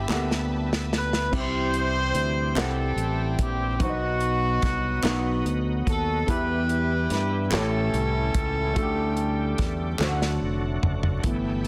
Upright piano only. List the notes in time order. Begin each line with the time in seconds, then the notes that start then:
Already playing: G2 B3 G4 A4 E5
0.08 A#3 G4 A4 F#5
0.15 B3
1.31 C3 C4 E4 G4 E5
2.55 C4 E4 G4 F#5
3.79 B2 B3 D#4 F#4 C5
3.90 D#5
5.03 B3 D#4 F#4 F#5
6.27 E3 B3 E4 G4 E5
7.50 A2 A3 E4 G4 C#5
8.74 D3 A3 F#4 A4
8.82 G4
9.98 D3 A3 F#4 C5
10.09 F#5
11.24 E3 A3 B3